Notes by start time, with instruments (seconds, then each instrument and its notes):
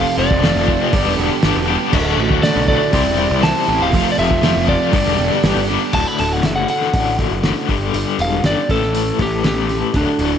Already playing: overdriven electric guitar F2 C3, steel-string acoustic guitar F3 A3 C4 F4 C5, lead electric guitar F5
0.17 picked electric bass F1, overdriven electric guitar F3 A3, steel-string acoustic guitar C4 F4 C5, lead electric guitar D5
0.31 picked electric bass F1, kick
0.42 overdriven electric guitar F2 C3, steel-string acoustic guitar F3 A3 C4 F4 C5, snare, open hi-hat
0.55 picked electric bass F1, snare
0.66 overdriven electric guitar F3 A3, steel-string acoustic guitar C4 F4 C5, kick
0.91 picked electric bass G1, overdriven electric guitar G2 D3 B3, steel-string acoustic guitar G3 D4 G4 B4, kick, open hi-hat
1.05 picked electric bass E1
1.18 picked electric bass E1, overdriven electric guitar G2 D3 G3 B3, steel-string acoustic guitar D4 G4 B4
1.42 picked electric bass G1, steel-string acoustic guitar G3 D4 G4 B4, overdriven electric guitar B3, snare, open hi-hat
1.55 picked electric bass E1
1.67 overdriven electric guitar G3 B3, steel-string acoustic guitar D4 G4 B4
1.92 picked electric bass D1, overdriven electric guitar D2 A2, steel-string acoustic guitar D3 A3 D4 F#4 A4, kick, crash
2.17 picked electric bass A1, overdriven electric guitar D3 A3, steel-string acoustic guitar D4 F#4 A4
2.30 picked electric bass D2, kick
2.42 overdriven electric guitar D2 A2, steel-string acoustic guitar D3 A3 D4 F#4 A4, lead electric guitar D5, snare, open hi-hat
2.56 picked electric bass B1
2.68 overdriven electric guitar D3 A3, steel-string acoustic guitar D4 F#4 A4, lead electric guitar D5, kick
2.92 picked electric bass C2, overdriven electric guitar C3 G4, steel-string acoustic guitar G3 C4 E4 C5, kick, open hi-hat
3.05 picked electric bass E1
3.18 overdriven electric guitar C3 G4, steel-string acoustic guitar G3 C4 E4 C5
3.31 picked electric bass C2
3.42 steel-string acoustic guitar C3 E3 G3 C4 E4 C5, overdriven electric guitar G4, lead electric guitar A5, snare, open hi-hat
3.68 picked electric bass A1, steel-string acoustic guitar G3 C4 E4 C5, overdriven electric guitar G4
3.80 picked electric bass D1, lead electric guitar F5
3.92 picked electric bass F1, overdriven electric guitar F2 C3, steel-string acoustic guitar F3 A3 C4 F4 C5, kick, open hi-hat
4.12 lead electric guitar D5
4.17 picked electric bass F1, overdriven electric guitar F3 A3, steel-string acoustic guitar C4 F4 C5, lead electric guitar E5
4.31 picked electric bass F1, kick
4.43 overdriven electric guitar F2 C3, steel-string acoustic guitar F3 A3 C4 F4 C5, snare, open hi-hat
4.56 picked electric bass F1
4.67 overdriven electric guitar F3 A3, steel-string acoustic guitar C4 F4 C5, lead electric guitar D5, kick
4.92 picked electric bass G1, overdriven electric guitar G2 D3 B3, steel-string acoustic guitar G3 D4 G4 B4, kick, open hi-hat
5.06 picked electric bass E1
5.18 picked electric bass E1, overdriven electric guitar G2 D3 G3 B3, steel-string acoustic guitar D4 G4 B4
5.43 picked electric bass G1, steel-string acoustic guitar G3 D4 G4 B4, overdriven electric guitar B3, snare, open hi-hat
5.56 picked electric bass G1
5.67 overdriven electric guitar G3 B3, steel-string acoustic guitar D4 G4 B4
5.93 picked electric bass D1, overdriven electric guitar D2 A2, steel-string acoustic guitar D3 A3 D4 F#4 A4, lead electric guitar A5, kick, crash
6.07 lead electric guitar B5
6.19 picked electric bass D1, steel-string acoustic guitar D4 F#4 A4, lead electric guitar A5, open hi-hat
6.33 lead electric guitar F#5
6.43 picked electric bass F#1, steel-string acoustic guitar D3 A3 D4 F#4 A4, lead electric guitar E5, snare, open hi-hat
6.56 lead electric guitar F#5
6.68 overdriven electric guitar D2 A2 D3, steel-string acoustic guitar D4 F#4 A4, lead electric guitar F#5, open hi-hat
6.81 snare
6.93 picked electric bass A1, steel-string acoustic guitar A3 D4 F#4 A4, kick, open hi-hat
7.19 steel-string acoustic guitar D4 F#4 A4, kick, open hi-hat
7.31 picked electric bass F#1
7.43 overdriven electric guitar D2 A2, steel-string acoustic guitar D3 A3 D4 F#4 A4, snare, open hi-hat
7.68 picked electric bass G1, overdriven electric guitar G2 D3 G3, steel-string acoustic guitar D4 G4 B4, kick, open hi-hat
7.93 picked electric bass G1, steel-string acoustic guitar G3 D4 G4 B4, open hi-hat
8.19 picked electric bass E1, steel-string acoustic guitar D4 G4 B4, lead electric guitar F5, open hi-hat
8.43 picked electric bass G1, overdriven electric guitar G2 D3, steel-string acoustic guitar G3 D4 G4 B4, lead electric guitar D5, snare, open hi-hat
8.68 picked electric bass A1, overdriven electric guitar A2 E3, steel-string acoustic guitar A3 C#4 E4 A4, lead electric guitar A4, kick, open hi-hat
8.82 snare
8.94 steel-string acoustic guitar A3 C#4 E4 A4, open hi-hat
9.19 picked electric bass A1, steel-string acoustic guitar A3 C#4 E4 A4, lead electric guitar G4, kick, open hi-hat
9.43 steel-string acoustic guitar A2 E3 A3 C#4 E4 A4, lead electric guitar G4, snare, open hi-hat
9.69 steel-string acoustic guitar A3 C#4 E4 A4, snare, open hi-hat
9.94 picked electric bass D1, overdriven electric guitar D2 A2, steel-string acoustic guitar D3 A3 D4 F#4 A4, lead electric guitar D4, kick, open hi-hat
10.19 picked electric bass D1, steel-string acoustic guitar D4 F#4 A4, open hi-hat